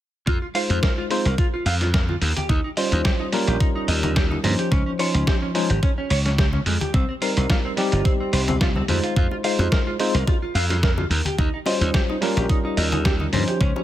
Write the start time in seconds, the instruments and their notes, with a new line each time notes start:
0.27 slap bass F2, clean electric guitar F4, kick, closed hi-hat
0.42 clean electric guitar F4
0.55 tine electric piano G#3 D#4 F4 C5, clean electric guitar F5, open hi-hat
0.70 slap bass F2, clean electric guitar F4, closed hi-hat
0.83 clean electric guitar A#4, kick, snare, closed hi-hat
0.98 clean electric guitar F4
1.10 tine electric piano G#3 D#4 F4 C5, clean electric guitar C4, open hi-hat
1.25 slap bass C2, clean electric guitar A#4, closed hi-hat
1.38 clean electric guitar F4, kick, closed hi-hat
1.54 clean electric guitar F4
1.66 slap bass F2, clean electric guitar F5, open hi-hat
1.81 clean electric guitar F4, snare, closed hi-hat
1.94 clean electric guitar A#4, kick, snare, closed hi-hat
2.09 clean electric guitar F4, high conga
2.21 slap bass D#2, clean electric guitar A#3, open hi-hat
2.36 clean electric guitar G4, closed hi-hat, high conga
2.49 slap bass D#2, clean electric guitar D#4, kick, closed hi-hat
2.64 clean electric guitar D#4
2.77 tine electric piano G3 C#4 F4 C5, clean electric guitar D#5, open hi-hat
2.92 slap bass D#2, clean electric guitar D#4, closed hi-hat
3.04 clean electric guitar G4, kick, snare, closed hi-hat
3.20 clean electric guitar D#4
3.32 tine electric piano G3 C#4 F4 A#4, clean electric guitar A#3, snare, open hi-hat
3.47 slap bass A#1, clean electric guitar G4, closed hi-hat
3.60 clean electric guitar D#4, kick, closed hi-hat
3.75 clean electric guitar D#4
3.88 slap bass D#2, clean electric guitar D#5, open hi-hat
4.03 clean electric guitar D#4, closed hi-hat, high conga
4.16 clean electric guitar G4, kick, snare, closed hi-hat
4.31 clean electric guitar D#4, high conga
4.43 slap bass G2, tine electric piano F3 C#4 D#4 C5, clean electric guitar A#3, open hi-hat, high conga
4.59 clean electric guitar G4, closed hi-hat
4.71 slap bass C#2, clean electric guitar C#4, kick, closed hi-hat
4.86 clean electric guitar C#4
4.99 tine electric piano F3 C#4 D#4 C6, clean electric guitar C#5, open hi-hat
5.14 slap bass C#2, clean electric guitar C#4, closed hi-hat
5.27 clean electric guitar G4, kick, snare, closed hi-hat
5.42 clean electric guitar C#4
5.54 tine electric piano F3 C#4 D#4 C5, clean electric guitar G#3, open hi-hat
5.70 slap bass G#1, clean electric guitar G4, closed hi-hat
5.83 clean electric guitar C#4, kick, closed hi-hat
5.98 clean electric guitar C#4
6.10 slap bass C#2, clean electric guitar C#5, open hi-hat
6.26 clean electric guitar C#4, snare, closed hi-hat
6.38 clean electric guitar G4, kick, snare, closed hi-hat
6.53 clean electric guitar C#4, high conga
6.66 slap bass F2, clean electric guitar G#3, open hi-hat
6.81 clean electric guitar G4, closed hi-hat, high conga
6.94 slap bass C2, clean electric guitar C4, kick, closed hi-hat
7.09 clean electric guitar C4
7.21 tine electric piano G3 C4 D#4 A#4, clean electric guitar C5, open hi-hat
7.37 slap bass C2, clean electric guitar C4, closed hi-hat
7.50 clean electric guitar F4, kick, snare, closed hi-hat
7.65 clean electric guitar C4
7.77 tine electric piano G3 C4 D#4 G4, clean electric guitar G3, snare, open hi-hat
7.92 slap bass G1, clean electric guitar F4, closed hi-hat
8.05 clean electric guitar C4, kick, closed hi-hat
8.20 clean electric guitar C4
8.33 slap bass C2, clean electric guitar C5, open hi-hat
8.48 clean electric guitar C4, closed hi-hat, high conga
8.61 clean electric guitar F4, kick, snare, closed hi-hat
8.76 clean electric guitar C4, high conga
8.88 slap bass F2, clean electric guitar G3, tine electric piano G#3 D#4 F4 C5, open hi-hat, high conga
9.04 clean electric guitar F4, closed hi-hat
9.16 slap bass F2, clean electric guitar F4, kick, closed hi-hat
9.31 clean electric guitar F4, high bongo
9.44 tine electric piano G#3 D#4 F4 C5, clean electric guitar F5, open hi-hat
9.59 slap bass F2, clean electric guitar F4, closed hi-hat, high bongo
9.72 clean electric guitar A#4, kick, snare, closed hi-hat
9.87 clean electric guitar F4
9.99 tine electric piano G#3 D#4 F4 C5, clean electric guitar C4, open hi-hat, high bongo
10.14 slap bass C2, clean electric guitar A#4, closed hi-hat
10.27 clean electric guitar F4, kick, closed hi-hat, high bongo
10.42 clean electric guitar F4
10.55 slap bass F2, clean electric guitar F5, open hi-hat
10.70 clean electric guitar F4, snare, closed hi-hat, high bongo
10.83 clean electric guitar A#4, kick, snare, closed hi-hat
10.98 clean electric guitar F4, high bongo, high conga
11.10 slap bass D#2, clean electric guitar A#3, open hi-hat
11.25 clean electric guitar G4, closed hi-hat, high conga
11.38 slap bass D#2, clean electric guitar D#4, kick, closed hi-hat, high bongo
11.54 clean electric guitar D#4
11.66 tine electric piano G3 C#4 F4 C5, clean electric guitar D#5, open hi-hat, high bongo
11.81 slap bass D#2, clean electric guitar D#4, closed hi-hat
11.94 clean electric guitar G4, kick, snare, closed hi-hat
12.09 clean electric guitar D#4, high bongo
12.21 tine electric piano G3 C#4 F4 A#4, clean electric guitar A#3, snare, open hi-hat
12.37 slap bass A#1, clean electric guitar G4, closed hi-hat, high bongo
12.50 clean electric guitar D#4, kick, closed hi-hat
12.65 clean electric guitar D#4
12.77 slap bass D#2, clean electric guitar D#5, open hi-hat, high bongo
12.92 clean electric guitar D#4, closed hi-hat, high conga
13.05 clean electric guitar G4, kick, snare, closed hi-hat, high bongo
13.20 clean electric guitar D#4, high conga
13.33 slap bass G2, tine electric piano F3 C#4 D#4 C5, clean electric guitar A#3, open hi-hat, high conga
13.48 clean electric guitar G4, closed hi-hat, high bongo
13.60 slap bass C#2, clean electric guitar C#4, kick, closed hi-hat
13.76 clean electric guitar C#4, high bongo